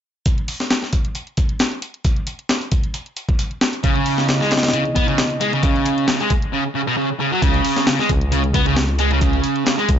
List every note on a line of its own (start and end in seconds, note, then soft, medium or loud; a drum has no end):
0.26 kick loud
0.26 closed hi-hat medium
0.26 closed hi-hat soft
0.38 closed hi-hat soft
0.48 closed hi-hat medium
0.48 open hi-hat medium
0.60 snare soft
0.60 closed hi-hat soft
0.70 snare loud
0.70 closed hi-hat soft
0.70 closed hi-hat medium
0.82 snare soft
0.82 closed hi-hat soft
0.93 kick medium
0.93 closed hi-hat medium
1.05 closed hi-hat soft
1.15 closed hi-hat soft
1.15 closed hi-hat medium
1.27 closed hi-hat soft
1.37 kick medium
1.37 closed hi-hat medium
1.49 closed hi-hat soft
1.59 snare loud
1.59 closed hi-hat soft
1.59 closed hi-hat medium
1.72 closed hi-hat soft
1.82 closed hi-hat medium
1.94 closed hi-hat soft
2.04 kick loud
2.04 closed hi-hat soft
2.04 closed hi-hat medium
2.17 closed hi-hat soft
2.27 closed hi-hat medium
2.39 closed hi-hat soft
2.49 snare loud
2.49 closed hi-hat soft
2.49 closed hi-hat medium
2.61 closed hi-hat soft
2.72 kick medium
2.72 closed hi-hat medium
2.84 closed hi-hat soft
2.94 closed hi-hat soft
2.94 closed hi-hat medium
3.06 closed hi-hat soft
3.17 closed hi-hat medium
3.29 kick medium
3.29 closed hi-hat soft
3.39 closed hi-hat medium
3.39 closed hi-hat soft
3.51 closed hi-hat soft
3.61 snare loud
3.61 closed hi-hat medium
3.73 closed hi-hat soft
3.84 6.50 C#3 medium
3.84 4.28 C#3 medium
3.84 6.50 B3 medium
3.84 6.50 E4 medium
3.84 6.50 D#5 medium
3.84 kick loud
3.84 closed hi-hat soft
3.84 closed hi-hat medium
3.96 closed hi-hat soft
4.06 closed hi-hat medium
4.06 open hi-hat medium
4.18 snare medium
4.18 closed hi-hat soft
4.28 4.40 C#3 medium
4.28 snare loud
4.28 closed hi-hat soft
4.28 closed hi-hat medium
4.40 4.51 G#3 medium
4.40 snare soft
4.40 closed hi-hat soft
4.51 snare medium
4.51 closed hi-hat medium
4.57 snare medium
4.57 closed hi-hat medium
4.63 snare medium
4.63 closed hi-hat soft
4.63 closed hi-hat medium
4.68 snare medium
4.68 closed hi-hat medium
4.73 4.83 C#3 loud
4.73 closed hi-hat medium
4.73 closed hi-hat soft
4.85 closed hi-hat soft
4.95 5.07 B3 medium
4.95 kick medium
4.95 closed hi-hat medium
5.08 5.18 C#3 loud
5.08 closed hi-hat soft
5.18 snare loud
5.18 closed hi-hat medium
5.18 closed hi-hat soft
5.30 closed hi-hat soft
5.41 5.52 G#3 medium
5.41 closed hi-hat medium
5.53 5.62 C#3 medium
5.53 closed hi-hat soft
5.63 6.07 C#3 medium
5.63 kick loud
5.63 closed hi-hat medium
5.63 closed hi-hat soft
5.76 closed hi-hat soft
5.86 closed hi-hat medium
5.98 closed hi-hat soft
6.08 6.19 C#3 loud
6.08 snare loud
6.08 closed hi-hat medium
6.08 closed hi-hat soft
6.20 6.30 G#3 medium
6.20 closed hi-hat soft
6.30 kick medium
6.30 closed hi-hat medium
6.42 closed hi-hat soft
6.53 6.63 C#3 medium
6.75 6.81 C#3 medium
6.87 6.96 B2 loud
6.97 7.08 C#3 medium
7.20 7.31 C#3 loud
7.32 7.40 F#3 medium
7.42 7.60 C#2 medium
7.42 7.86 C#3 medium
7.42 kick loud
7.42 closed hi-hat soft
7.42 closed hi-hat medium
7.54 closed hi-hat soft
7.65 closed hi-hat medium
7.65 open hi-hat medium
7.77 snare medium
7.77 closed hi-hat soft
7.87 7.98 C#3 loud
7.87 snare loud
7.87 closed hi-hat medium
7.87 closed hi-hat soft
7.99 8.09 G#3 medium
7.99 snare soft
7.99 closed hi-hat soft
8.09 9.40 C#2 loud
8.09 kick medium
8.09 closed hi-hat medium
8.21 closed hi-hat soft
8.32 8.42 C#3 loud
8.32 closed hi-hat soft
8.32 closed hi-hat medium
8.44 closed hi-hat soft
8.54 8.65 B3 medium
8.54 kick medium
8.54 closed hi-hat medium
8.66 8.76 C#3 medium
8.66 closed hi-hat soft
8.76 snare loud
8.76 closed hi-hat soft
8.76 closed hi-hat medium
8.89 closed hi-hat soft
8.99 9.10 G#3 medium
8.99 closed hi-hat medium
9.11 9.20 C#3 medium
9.11 closed hi-hat soft
9.21 9.65 C#3 medium
9.21 kick loud
9.21 closed hi-hat soft
9.21 closed hi-hat medium
9.33 closed hi-hat soft
9.44 closed hi-hat medium
9.56 closed hi-hat soft
9.66 9.77 C#3 loud
9.66 snare loud
9.66 closed hi-hat soft
9.66 closed hi-hat medium
9.78 9.88 G#3 medium
9.78 closed hi-hat soft
9.89 9.99 C#2 loud
9.89 kick medium
9.89 closed hi-hat medium